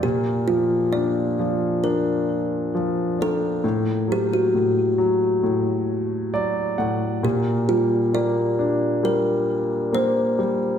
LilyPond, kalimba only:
\new Staff \with { instrumentName = "Kalimba" } { \time 4/4 \key bes \major \tempo 4 = 67 g'8 f'8 d''4 bes'4 r8 a'8~ | a'8 g'16 fis'2~ fis'8. r8 | g'8 f'8 d''4 bes'4 c''4 | }